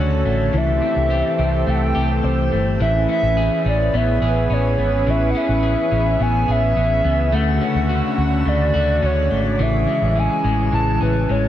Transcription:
Already playing: fingered electric bass D2, analog synth pad C#3 D3 F#4 A4, clean electric guitar A3 C#4 F#4
0.00 soft synth lead C#5
0.25 fingered electric bass A1, clean electric guitar A3
0.53 fingered electric bass C2, clean electric guitar E3, analog synth pad E3 C4 G4 A4
0.57 soft synth lead E5
0.82 clean electric guitar C4
0.96 fingered electric bass C2
1.10 clean electric guitar G4
1.38 fingered electric bass C2, clean electric guitar C4
1.67 fingered electric bass C2, clean electric guitar A3, soft synth lead G5
1.75 soft synth lead F#5
1.82 soft synth lead G5
1.95 fingered electric bass C2, clean electric guitar G4
2.23 fingered electric bass C2, clean electric guitar C4, soft synth lead C5
2.52 fingered electric bass G1, clean electric guitar A3
2.80 fingered electric bass A1, clean electric guitar E3, analog synth pad C#4 G#4 B4, soft synth lead E5
3.09 clean electric guitar C#4, soft synth lead E5
3.22 fingered electric bass A1
3.37 clean electric guitar G#4
3.65 fingered electric bass A1, clean electric guitar C#4, soft synth lead D5
3.93 fingered electric bass A1, clean electric guitar B3, soft synth lead E5
4.21 fingered electric bass A1, clean electric guitar G#4
4.50 fingered electric bass A1, clean electric guitar C#4, soft synth lead C#5
4.78 fingered electric bass G#1, clean electric guitar B3
5.06 fingered electric bass A1, clean electric guitar E3, soft synth lead E5
5.31 soft synth lead F#5
5.35 clean electric guitar C#4, soft synth lead E5
5.49 fingered electric bass A1
5.63 clean electric guitar G#4
5.91 fingered electric bass A1, clean electric guitar C#4
6.20 fingered electric bass A1, clean electric guitar B3, soft synth lead G#5
6.48 fingered electric bass A1, clean electric guitar G#4, soft synth lead E5
6.76 fingered electric bass A1, clean electric guitar C#4
7.04 fingered electric bass C#2, clean electric guitar B3
7.32 fingered electric bass D2, analog synth pad C#3 D3 F#4, clean electric guitar A3, soft synth lead F#5
7.61 clean electric guitar C#4
7.75 fingered electric bass D2
7.89 clean electric guitar F#4
8.17 fingered electric bass D2, soft synth lead F#5
8.46 fingered electric bass D2, clean electric guitar A3, soft synth lead D5
8.74 fingered electric bass D2, clean electric guitar F#4
9.02 fingered electric bass D2, clean electric guitar C#4, soft synth lead C#5
9.30 fingered electric bass G#1, clean electric guitar A3
9.59 fingered electric bass A1, analog synth pad E3 G#4, clean electric guitar E3, soft synth lead E5
9.87 clean electric guitar G#3
10.02 fingered electric bass A1
10.16 clean electric guitar C#4, soft synth lead G#5
10.44 fingered electric bass A1, clean electric guitar G#3
10.72 fingered electric bass A1, clean electric guitar E3, soft synth lead A5
11.01 fingered electric bass A1, clean electric guitar C#4, soft synth lead B4
11.29 fingered electric bass A1, clean electric guitar G#3, soft synth lead C#5

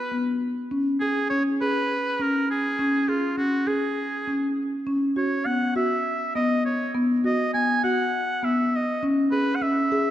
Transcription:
Already playing: oboe B4
0.12 marimba B3
0.71 marimba C#4
1.00 oboe G#4, marimba G#4
1.30 marimba C#4, oboe C#5
1.61 marimba G#4, oboe B4
2.19 marimba C#4, oboe A#4
2.51 oboe G#4
2.79 marimba C#4
3.08 oboe F4, marimba G#4
3.37 marimba C#4, oboe F#4
3.67 marimba G#4, oboe G#4
4.27 marimba C#4
4.87 marimba C#4
5.16 marimba F#4, oboe C#5
5.46 marimba B3, oboe F#5
5.76 marimba F#4, oboe E5
6.35 marimba B3, oboe D#5
6.66 oboe C#5
6.94 marimba B3
7.24 marimba F#4, oboe D#5
7.54 marimba B3, oboe G#5
7.84 marimba F#4, oboe F#5
8.43 marimba B3, oboe E5
8.76 oboe D#5
9.03 marimba C#4
9.31 marimba G#4, oboe B4
9.55 oboe F#5
9.62 marimba C#4, oboe E5
9.92 marimba G#4

